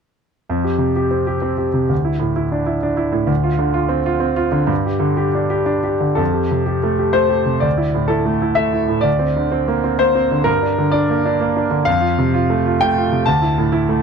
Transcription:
grand piano
0.49 F2
0.64 G4
0.78 C3
0.96 G4
1.11 C4
1.27 G4
1.42 C4
1.58 G4
1.74 C3
1.89 D2
2.05 E4
2.19 A2
2.36 E4
2.52 D4
2.66 E4
2.83 D4
2.97 E4
3.12 A2
3.27 D2
3.44 F4
3.59 D3
3.74 F4
3.89 C4
4.06 F4
4.20 C4
4.36 F4
4.52 D3
4.67 G2
4.86 G4
5.00 D3
5.17 G4
5.35 D4
5.50 G4
5.66 D4
5.83 G4
6.00 D3
6.15 F2 A4
6.34 G4
6.51 C3
6.66 G4
6.83 A3
6.99 G4
7.13 A3 C5
7.29 G4
7.46 C3
7.60 D2 D5
7.77 E4
7.94 A2
8.08 E4 A4
8.26 A3
8.42 E4
8.55 A3 E5
8.73 E4
8.88 A2
9.01 D2 D5
9.19 C4
9.36 D3
9.52 C4
9.68 A#3
9.84 C4
9.99 A#3 C5
10.15 C4
10.31 D3
10.44 G2 A#4
10.63 D4
10.78 D3
10.92 D4 D5
11.10 A#3
11.26 D4
11.41 A#3
11.56 D4
11.71 D3
11.85 F2 F5
12.01 F4
12.19 C3
12.34 F4
12.50 A3
12.66 F4
12.81 A3 G5
12.98 F4
13.12 C3
13.26 D2 A5
13.42 E4
13.58 A2
13.72 E4
13.89 A3

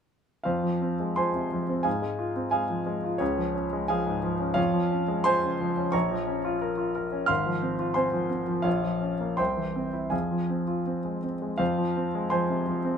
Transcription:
grand piano
0.43 F2 F4 C5 F5
0.63 F3
0.82 C4
1.00 G#3
1.16 F3 C5 G#5 C6
1.35 C3
1.52 F3
1.69 C4
1.83 G#2 G#4 F5 G#5
2.02 G#3
2.19 F4
2.36 C4
2.51 G#3 G#4 F5 G#5
2.70 F3
2.87 G#3
3.04 F4
3.18 C#2 C#4 G#4 C#5
3.37 F3
3.55 C#4
3.73 G#3
3.88 F3 G#4 F5 G#5
4.07 G#2
4.23 F3
4.40 C#4
4.54 F2 F4 C#5 F5
4.73 F3
4.91 C#4
5.08 G#3
5.24 F3 C5 G#5 C6
5.43 C#3
5.61 F3
5.77 C#4
5.92 A#1 C#5 A#5 C#6
6.11 F3
6.27 C#4
6.45 F4
6.61 A#4
6.78 F4
6.95 A#4
7.12 C#4
7.26 G#1 F5 C6 F6
7.46 F3
7.62 C4
7.79 F4
7.94 C4 C5 G#5 C6
8.13 F3
8.29 C4
8.47 F3
8.62 A#1 F4 C#5 F5
8.83 F3
9.01 C#4
9.21 A#3
9.37 C2 C5 G5 C6
9.57 E3
9.76 C4
9.93 E4
10.10 F2 G#4 F5 G#5
10.31 F3
10.50 C4
10.68 F4
10.86 C4
11.05 G#3
11.23 C4
11.42 G#3
11.58 F2 F4 C5 F5
11.78 F3
11.97 C4
12.15 G#3
12.30 F3 C5 G#5 C6
12.50 C3
12.67 F3
12.85 C4

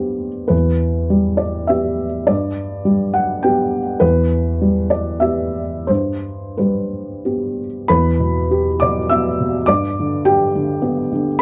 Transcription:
felt piano
Already playing: G2 G3 B3 G4 B4 C5
0.48 E2 B4
1.10 G3
1.37 D5
1.67 B3 G4 E5
2.27 G2 D5
2.85 G3
3.14 F#5
3.43 B3 G4 G5
4.00 E2 B4
4.61 G3
4.90 D5
5.20 B3 G4 E5
5.87 G2 C5
6.58 G3 B4
7.25 B3 G4
7.88 E2 B4 B5
8.20 B2
8.51 G4
8.80 B2 D5 D6
9.10 B3 E5 E6
9.40 B2
9.66 G2 D5 D6
10.00 D3
10.25 G4 G5
10.56 D3
10.82 B3
11.12 D3
11.39 B5

